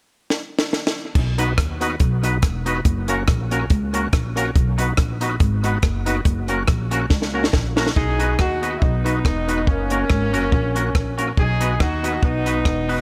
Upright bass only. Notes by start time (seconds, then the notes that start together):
1.16 B1
1.58 D#2
2.00 B1
2.43 E1
2.85 F#1
3.28 A#1
3.70 C#2
4.13 A#1
4.56 B1
4.98 A#1
5.41 G#1
5.83 F#1
6.26 F#1
6.68 A#1
7.11 C#2
7.54 A#1
7.96 B1
8.40 D#2
8.82 B1
9.26 E1
9.67 F#1
10.10 G#1
10.34 F#1
10.53 A#1
10.95 A#1
11.38 B1
11.80 D#2
12.23 B1
12.65 E1